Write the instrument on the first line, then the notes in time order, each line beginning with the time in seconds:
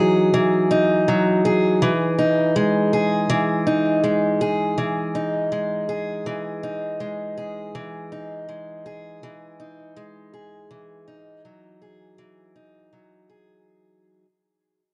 steel-string acoustic guitar
Already playing: E3 F#3 D#4 G#4
0.34 E3
0.71 D#4
1.08 F#3
1.45 G#4
1.82 E3
2.18 D#4
2.56 G#3
2.93 G#4
3.30 E3
3.67 D#4
4.04 G#3
4.41 G#4
4.78 E3
5.15 D#4
5.52 G#3
5.89 G#4
6.26 E3
6.63 D#4
7.00 G#3
7.38 G#4
7.75 E3
8.12 D#4
8.49 G#3
8.86 G#4
9.23 E3
9.60 D#4
9.97 G#3
10.34 G#4
10.71 E3
11.08 D#4
11.45 F#3
11.82 G#4
12.18 E3
12.56 D#4
12.93 F#3
13.30 G#4